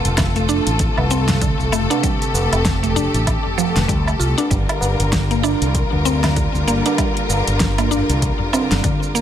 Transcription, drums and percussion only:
0.05 closed hi-hat, shaker
0.18 kick, snare, closed hi-hat, low woodblock, shaker
0.36 closed hi-hat, shaker
0.49 tabla tin, shaker
0.67 closed hi-hat, shaker
0.79 kick, closed hi-hat, shaker
0.98 tabla na, tabla ge, low woodblock
1.10 tabla tin, shaker
1.28 snare, closed hi-hat, tabla ge, shaker
1.42 kick, closed hi-hat, shaker
1.60 shaker
1.73 low woodblock, shaker
1.91 closed hi-hat, tabla na, shaker
2.03 kick, closed hi-hat, shaker
2.22 closed hi-hat, shaker
2.34 tabla na, shaker
2.53 closed hi-hat, low woodblock, shaker
2.65 kick, snare, closed hi-hat, shaker
2.84 closed hi-hat, shaker
2.96 tabla tin, tabla ge, shaker
3.14 closed hi-hat, shaker
3.27 kick, closed hi-hat, low woodblock, shaker
3.46 tabla ge
3.58 tabla na, tabla tin, shaker
3.76 snare, closed hi-hat, tabla tin, shaker
3.89 kick, closed hi-hat, tabla ge, shaker
4.07 low woodblock, shaker
4.21 shaker
4.38 closed hi-hat, tabla na, shaker
4.51 kick, closed hi-hat, shaker
4.69 closed hi-hat, low woodblock
4.81 tabla na, shaker
5.00 closed hi-hat, shaker
5.13 kick, snare, closed hi-hat, shaker
5.31 closed hi-hat, shaker
5.44 tabla tin, low woodblock, shaker
5.62 closed hi-hat, shaker
5.75 kick, closed hi-hat, shaker
5.92 tabla na, tabla ge
6.05 tabla tin, shaker
6.23 snare, closed hi-hat, tabla ge, low woodblock, shaker
6.37 kick, closed hi-hat, shaker
6.55 shaker
6.68 shaker
6.86 closed hi-hat, tabla na, shaker
6.98 kick, closed hi-hat, low woodblock, shaker
7.17 closed hi-hat
7.29 tabla na, shaker
7.48 closed hi-hat, shaker
7.60 kick, snare, closed hi-hat, shaker
7.78 closed hi-hat, low woodblock, shaker
7.91 tabla tin, tabla ge, shaker
8.10 closed hi-hat, shaker
8.22 kick, closed hi-hat, shaker
8.39 tabla ge
8.52 tabla na, tabla tin, low woodblock, shaker
8.71 snare, closed hi-hat, tabla tin, shaker
8.83 kick, closed hi-hat, tabla ge, shaker
9.03 shaker
9.15 shaker

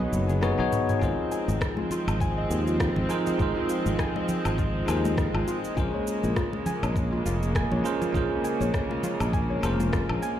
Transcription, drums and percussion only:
0.00 high tom
0.13 high tom, cabasa
0.29 mid tom, cabasa
0.43 cross-stick, mid tom, cabasa
0.72 mid tom, cabasa
0.89 mid tom, cabasa
1.02 kick, cabasa
1.32 cabasa
1.48 high conga, cabasa
1.61 kick, cross-stick, cabasa
1.77 high conga
1.91 low conga, cabasa
2.08 cabasa, low woodblock
2.20 kick, cabasa
2.51 cabasa
2.67 cabasa
2.80 kick, cross-stick, cabasa
2.96 low conga
3.10 cabasa
3.27 low conga, cabasa
3.39 kick, cabasa
3.69 cabasa
3.86 high conga, cabasa
3.99 kick, cross-stick, cabasa
4.16 high conga
4.29 low conga, cabasa
4.45 cabasa, low woodblock
4.58 kick, cabasa
4.88 cabasa, low woodblock
5.05 high conga, cabasa
5.18 kick, cross-stick, cabasa
5.35 low woodblock
5.48 cabasa
5.64 cabasa
5.77 kick, cabasa
6.07 cabasa
6.23 high conga, cabasa
6.36 kick, cross-stick, cabasa
6.53 high conga
6.66 low conga, cabasa
6.83 cabasa, low woodblock
6.96 kick, cabasa
7.26 cabasa
7.43 cabasa
7.55 kick, cross-stick, cabasa
7.72 low conga
7.85 cabasa
8.02 low conga, cabasa
8.14 kick, cabasa
8.45 cabasa
8.60 high conga, cabasa
8.74 kick, cross-stick, cabasa
8.91 high conga
9.03 low conga, cabasa
9.20 cabasa, low woodblock
9.33 kick, cabasa
9.63 cabasa, low woodblock
9.80 high conga, cabasa
9.93 kick, cross-stick, cabasa
10.09 low woodblock
10.23 cabasa

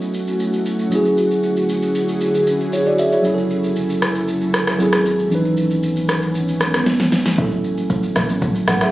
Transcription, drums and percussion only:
0.02 shaker
0.14 shaker
0.28 shaker
0.40 shaker
0.53 shaker
0.66 shaker
0.79 shaker
0.92 shaker
1.05 shaker
1.17 shaker
1.31 shaker
1.43 shaker
1.57 shaker
1.69 shaker
1.83 shaker
1.95 shaker
2.09 shaker
2.21 shaker
2.35 shaker
2.47 shaker
2.60 shaker
2.73 shaker
2.86 shaker
2.99 shaker
3.12 shaker
3.24 shaker
3.38 shaker
3.50 shaker
3.64 shaker
3.76 shaker
3.90 shaker
4.02 cross-stick, shaker
4.16 shaker
4.28 shaker
4.41 shaker
4.54 cross-stick, shaker
4.67 cross-stick, shaker
4.80 shaker
4.93 cross-stick, shaker
5.05 shaker
5.19 shaker
5.31 shaker
5.45 shaker
5.57 shaker
5.71 shaker
5.83 shaker
5.96 shaker
6.09 cross-stick, shaker
6.22 shaker
6.35 shaker
6.48 shaker
6.61 cross-stick, shaker
6.74 cross-stick, shaker
6.86 snare, shaker
7.00 snare, shaker
7.12 snare, shaker
7.26 snare, shaker
7.38 kick, low conga, shaker
7.52 high conga, shaker
7.64 shaker
7.78 high conga, shaker
7.90 kick, shaker
8.03 high conga, shaker
8.16 cross-stick, high conga, shaker
8.29 shaker
8.42 kick, low conga, shaker
8.55 shaker
8.68 cross-stick, high conga, shaker
8.81 cross-stick, shaker

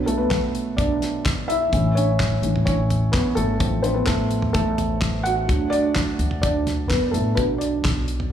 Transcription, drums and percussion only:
0.08 closed hi-hat
0.31 kick, snare, clap, closed hi-hat
0.55 closed hi-hat
0.78 kick, closed hi-hat
1.02 snare, closed hi-hat
1.26 kick, snare, clap, closed hi-hat
1.50 closed hi-hat
1.73 kick, closed hi-hat
1.97 closed hi-hat
2.20 kick, snare, clap, closed hi-hat
2.43 closed hi-hat
2.56 floor tom
2.67 kick, closed hi-hat
2.90 closed hi-hat, floor tom
3.14 kick, snare, clap, closed hi-hat
3.37 closed hi-hat
3.60 kick, closed hi-hat
3.84 closed hi-hat
4.07 kick, snare, clap, closed hi-hat
4.31 closed hi-hat
4.42 floor tom
4.54 kick, closed hi-hat
4.78 closed hi-hat, floor tom
5.02 kick, snare, clap, closed hi-hat
5.26 closed hi-hat
5.49 kick, closed hi-hat
5.73 closed hi-hat
5.95 kick, snare, clap, closed hi-hat
6.19 closed hi-hat
6.31 floor tom
6.43 kick, closed hi-hat
6.67 snare, closed hi-hat, floor tom
6.90 kick, snare, clap, closed hi-hat
7.14 closed hi-hat
7.37 kick, closed hi-hat
7.61 closed hi-hat
7.85 kick, snare, clap, closed hi-hat
8.08 closed hi-hat
8.20 floor tom

